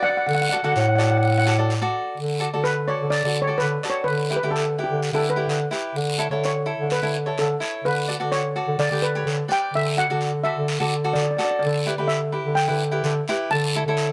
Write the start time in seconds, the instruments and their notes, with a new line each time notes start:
Already playing: cavaquinho F#4 B4 D5
0.03 steel pan D5 F#5
0.09 steel pan F#5
0.17 steel pan F#5
0.27 bass clarinet D3, steel pan F#5, long guiro
0.35 steel pan F#5
0.42 steel pan F#5
0.49 cavaquinho F#4 A4 D5, steel pan F#5
0.56 steel pan F#5
0.64 bass clarinet D3, cavaquinho F#4 A4 D5, steel pan F#5
0.72 bass clarinet A2, steel pan F#5, short guiro
0.80 steel pan F#5
0.88 steel pan F#5
0.96 cavaquinho F#4 A4 D5, steel pan F#5, short guiro
1.03 steel pan F#5
1.11 steel pan F#5
1.17 steel pan F#5
1.23 steel pan F#5, long guiro
1.31 steel pan F#5
1.38 steel pan F#5
1.46 cavaquinho F#4 A4 D5, steel pan F#5, short guiro
1.59 cavaquinho F#4 A4 D5
1.70 short guiro
1.81 cavaquinho F#4 A4 D5
2.17 bass clarinet D3, long guiro
2.40 cavaquinho F#4 A4 D5
2.53 bass clarinet D3, cavaquinho F#4 A4 D5
2.64 steel pan B4, short guiro
2.88 cavaquinho F#4 A4 D5, steel pan C#5
3.01 bass clarinet D3
3.10 steel pan D5, short guiro, long guiro
3.24 bass clarinet D3, cavaquinho F#4 A4 D5
3.42 steel pan C#5
3.47 cavaquinho F#4 A4 D5
3.58 bass clarinet D3, steel pan B4, short guiro
3.83 cavaquinho F#4 A4 D5, short guiro
3.90 steel pan C#5
4.04 bass clarinet D3, steel pan B4, long guiro
4.30 cavaquinho E4 G4 B4
4.36 steel pan B4
4.42 bass clarinet D3, cavaquinho E4 G4 B4
4.51 steel pan A4
4.56 short guiro
4.78 cavaquinho E4 G4 B4
4.84 steel pan G4
4.89 bass clarinet D3
5.02 short guiro, long guiro
5.13 bass clarinet D3, cavaquinho E4 G4 B4, steel pan A4
5.30 steel pan B4
5.36 cavaquinho E4 G4 B4
5.48 bass clarinet D3, short guiro
5.71 cavaquinho E4 G4 B4, short guiro
5.95 bass clarinet D3, long guiro
6.18 cavaquinho E4 A4 C#5
6.30 bass clarinet D3, cavaquinho E4 A4 C#5
6.44 steel pan C#5, short guiro
6.66 cavaquinho E4 A4 C#5
6.78 bass clarinet D3
6.90 steel pan B4, short guiro, long guiro
7.02 bass clarinet D3, cavaquinho E4 A4 C#5
7.26 cavaquinho E4 A4 C#5
7.37 bass clarinet D3, steel pan A4, short guiro
7.60 cavaquinho E4 A4 C#5, short guiro
7.84 bass clarinet D3, steel pan B4, long guiro
8.08 cavaquinho F#4 A4 D5
8.20 bass clarinet D3, cavaquinho F#4 A4 D5
8.32 steel pan C#5, short guiro
8.56 cavaquinho F#4 A4 D5
8.67 bass clarinet D3
8.78 bass clarinet D3, steel pan D5, short guiro, long guiro
8.91 bass clarinet D3, cavaquinho G4 B4 D5
9.02 steel pan B4
9.15 cavaquinho G4 B4 C#5
9.26 bass clarinet D3, short guiro
9.48 cavaquinho G4 B4 D5, steel pan G5, short guiro
9.73 bass clarinet D3, steel pan E5, long guiro
9.97 cavaquinho F#4 A4 D5, steel pan F#5
10.10 bass clarinet D3, cavaquinho F#4 A4 D5
10.21 short guiro
10.44 cavaquinho F#4 A4 D5, steel pan E5
10.56 bass clarinet D3
10.68 short guiro, long guiro
10.80 bass clarinet D3, cavaquinho F#4 A4 D5
11.04 cavaquinho F#4 A4 D5
11.13 bass clarinet D3, steel pan D5, short guiro
11.23 steel pan D5
11.31 steel pan D5
11.37 cavaquinho F#4 A4 D5, steel pan D5, short guiro
11.45 steel pan D5
11.51 steel pan D5
11.59 bass clarinet D3, steel pan D5, long guiro
11.66 steel pan D5
11.86 cavaquinho E4 G4 B4
11.98 bass clarinet D3, cavaquinho E4 G4 B4
12.08 steel pan E5, short guiro
12.32 cavaquinho E4 G4 B4
12.44 bass clarinet D3
12.55 steel pan G5, short guiro, long guiro
12.68 bass clarinet D3, cavaquinho E4 G4 B4
12.91 cavaquinho E4 G4 B4
13.03 bass clarinet D3, short guiro
13.28 cavaquinho E4 G4 B4, short guiro
13.51 bass clarinet D3, steel pan A5, long guiro
13.76 cavaquinho E4 A4 C#5
13.86 bass clarinet D3, cavaquinho E4 A4 C#5
13.97 short guiro